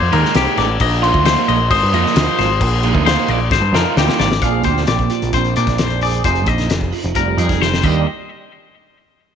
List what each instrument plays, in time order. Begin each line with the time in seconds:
Already playing: clean electric guitar C5
0.02 picked electric bass F2
0.13 picked electric bass D#2, overdriven electric guitar D#3 G#3 A#3 D#4, clean electric guitar A#4, crash
0.25 snare
0.34 picked electric bass C2, overdriven electric guitar D#3 G#3 A#3 D#4, clean electric guitar G4, snare, crash
0.57 picked electric bass A1, clean electric guitar D5, snare, crash
0.80 picked electric bass A#1, clean electric guitar D#5, kick, crash
1.03 overdriven electric guitar F3 A#3 D#4 F4, glockenspiel C6, crash
1.14 picked electric bass D2, kick
1.25 overdriven electric guitar F3 A#3 D#4 F4, clean electric guitar C5, snare, crash
1.48 picked electric bass A#1, clean electric guitar D#5, crash
1.71 picked electric bass G#1, clean electric guitar C5, glockenspiel D#6, kick, crash
1.83 picked electric bass G2
1.93 picked electric bass F2, overdriven electric guitar F3 A#3 D#4 F4, clean electric guitar D#5, crash
2.06 snare
2.16 picked electric bass D2, overdriven electric guitar F3 A#3 D#4 F4, clean electric guitar C5, snare, crash
2.38 picked electric bass G#1, clean electric guitar C5, snare, crash
2.61 picked electric bass A#1, clean electric guitar G#4, kick, crash
2.83 overdriven electric guitar F3 A#3 D#4 F4, crash
2.95 picked electric bass D2, kick
3.06 overdriven electric guitar F3 A#3 D#4 F4, clean electric guitar C5, snare, crash
3.28 picked electric bass A#1, clean electric guitar D5, crash
3.51 picked electric bass G#1, clean electric guitar C5, kick, snare
3.61 picked electric bass G2
3.73 picked electric bass F2, overdriven electric guitar F3 A#3 D#4 F4, clean electric guitar A#4, snare
3.97 picked electric bass D2, overdriven electric guitar F3 A#3 D#4 F4, clean electric guitar G4, snare
4.09 snare
4.19 picked electric bass G#1, clean electric guitar D5, snare
4.32 snare
4.41 picked electric bass A#1, clean electric guitar A#2 C4 D4 G#4 F5, kick, closed hi-hat
4.64 picked electric bass D2, clean electric guitar G4 C5, kick, closed hi-hat
4.77 snare
4.87 picked electric bass A#1, clean electric guitar D5, snare, closed hi-hat
4.99 kick, closed hi-hat
5.10 clean electric guitar F3, closed hi-hat
5.22 picked electric bass A#1, closed hi-hat
5.33 picked electric bass A#1, clean electric guitar C4 C5, kick, closed hi-hat
5.45 closed hi-hat
5.56 picked electric bass A#2, clean electric guitar D4 D5, closed hi-hat
5.67 picked electric bass A#1, kick, snare, closed hi-hat
5.78 clean electric guitar F2 C5, snare, closed hi-hat
5.90 closed hi-hat
6.01 clean electric guitar G#4 D5, open hi-hat
6.13 closed hi-hat
6.24 picked electric bass F1, clean electric guitar F2 D#4 G#4 C5, kick, closed hi-hat
6.35 closed hi-hat
6.46 picked electric bass A#1, clean electric guitar D#5, kick, closed hi-hat
6.58 snare, closed hi-hat
6.70 picked electric bass F1, snare, closed hi-hat
6.81 kick
6.92 clean electric guitar F3, open hi-hat
7.04 picked electric bass F1, closed hi-hat
7.15 picked electric bass F1, clean electric guitar G3 A#4, kick, closed hi-hat
7.38 picked electric bass F2, clean electric guitar D#4 G#4, closed hi-hat
7.49 picked electric bass F1, kick, snare, closed hi-hat
7.60 clean electric guitar C3 C5, snare
7.74 snare
7.83 clean electric guitar D#2 D#3 G3 D4 G4 D#5, picked electric bass D#2, kick, crash